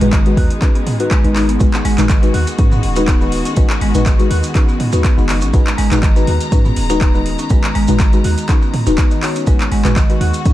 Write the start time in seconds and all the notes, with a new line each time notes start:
Already playing: D#3 G#3 B3 D#4
0.01 G#1 G#3 D#4 F#4 B4, closed hi-hat, mid tom
0.13 D#3, kick, clap, closed hi-hat
0.26 G#3 D#4 F#4 B4, closed hi-hat
0.37 D#2 F#4, kick, open hi-hat
0.50 closed hi-hat
0.62 G#3 C#4 D#4 F#4 B4, kick, clap, closed hi-hat
0.75 B3, closed hi-hat
0.87 mid tom, open hi-hat
1.00 G#3 D#4 F#4 B4, closed hi-hat
1.11 G#3, kick, clap, closed hi-hat
1.24 G#1 G#3 D#4 F#4 B4, closed hi-hat
1.36 D#4, clap, open hi-hat
1.49 B3, closed hi-hat
1.60 G#1 G#3 D#4 F#4 B4, kick, closed hi-hat, maracas
1.74 clap, maracas
1.85 G#1 G#3, open hi-hat
1.98 G#1 G#3 D#4 F#4 B4, clap, closed hi-hat, mid tom, maracas
2.09 D#3, kick, clap, closed hi-hat, maracas
2.23 G#3 D#4 F#4 B4, closed hi-hat, maracas
2.34 D#2 F#4, open hi-hat
2.47 closed hi-hat, maracas
2.59 G#2 G#3 C#4 D#4 F#4 B4, kick, closed hi-hat, maracas
2.72 B3, mid tom, maracas
2.83 D#1, open hi-hat
2.96 G#3 D#4 F#4 B4, closed hi-hat, maracas
3.08 B3, kick, clap, closed hi-hat, maracas
3.21 D#3 G#3 D#4 F#4 B4, maracas
3.32 open hi-hat
3.45 C#4, closed hi-hat, maracas
3.56 G#1 G#3 D#4 F#4 B4, kick, closed hi-hat, maracas
3.70 clap, maracas
3.81 G#1 G#3, open hi-hat
3.94 G#1 G#3 D#4 F#4 B4, closed hi-hat, mid tom, maracas
4.06 D#3, kick, clap, closed hi-hat, maracas
4.19 G#3 D#4 F#4 B4, closed hi-hat, maracas
4.31 D#2 F#4, open hi-hat
4.43 closed hi-hat, maracas
4.55 G#3 C#4 D#4 F#4 B4, kick, clap, closed hi-hat, maracas
4.68 B3, maracas
4.80 mid tom, open hi-hat
4.92 D#2 G#3 D#4 F#4 B4, closed hi-hat, maracas
5.04 B3, kick, clap, closed hi-hat, maracas
5.17 F#1 D#3 G#3 D#4 F#4 B4, maracas
5.29 clap, open hi-hat
5.41 G#1 C#4, closed hi-hat, maracas
5.53 G#1 G#3 D#4 F#4 B4 A#5, kick, closed hi-hat, maracas
5.67 clap, maracas
5.78 G#1 G#3, open hi-hat
5.91 G#1 G#3 D#4 F#4 B4, clap, closed hi-hat, mid tom, maracas
6.03 D#3, kick, clap, closed hi-hat, maracas
6.16 G#3 D#4 F#4 B4, closed hi-hat, maracas
6.27 D#2 F#4, open hi-hat
6.41 closed hi-hat, maracas
6.52 G#2 G#3 C#4 D#4 F#4 B4, kick, closed hi-hat, maracas
6.65 B3, mid tom, maracas
6.76 D#1, open hi-hat
6.90 G#3 D#4 F#4 B4, closed hi-hat, maracas
7.01 B3, kick, clap, closed hi-hat, maracas
7.14 D#3 G#3 D#4 F#4 B4, maracas
7.26 open hi-hat
7.38 C#4, closed hi-hat, maracas
7.50 G#1 G#3 D#4 F#4 B4, kick, closed hi-hat, maracas
7.64 clap, maracas
7.75 G#1 G#3, open hi-hat
7.87 G#1 G#3 D#4 F#4 B4, closed hi-hat, mid tom, maracas
7.99 D#3, kick, clap, closed hi-hat, maracas
8.13 G#3 D#4 F#4 B4, closed hi-hat, maracas
8.24 D#2 F#4, open hi-hat
8.38 closed hi-hat, maracas
8.49 G#3 C#4 D#4 F#4 B4, kick, clap, closed hi-hat, maracas
8.62 B3, maracas
8.74 mid tom, open hi-hat
8.86 D#1 G#3 D#4 F#4 B4, closed hi-hat, maracas
8.97 B3, kick, clap, closed hi-hat, maracas
9.11 D#3, closed hi-hat, maracas
9.22 G#3 D#4 F#4 C#5, clap, open hi-hat
9.36 C#4, closed hi-hat, maracas
9.47 G#1 G#3 D#4 F#4 B4, kick, closed hi-hat, maracas
9.60 clap, maracas
9.72 G#1 G#3, open hi-hat
9.85 G#1 G#3 D#4 F#4 B4, clap, closed hi-hat, mid tom, maracas
9.96 D#3, kick, clap, closed hi-hat, maracas
10.09 G#3 D#4 F#4 B4, closed hi-hat, maracas
10.21 D#2 F#4, open hi-hat
10.34 closed hi-hat, maracas
10.45 G#2 G#3 C#4 D#4 F#4 B4, kick, closed hi-hat, maracas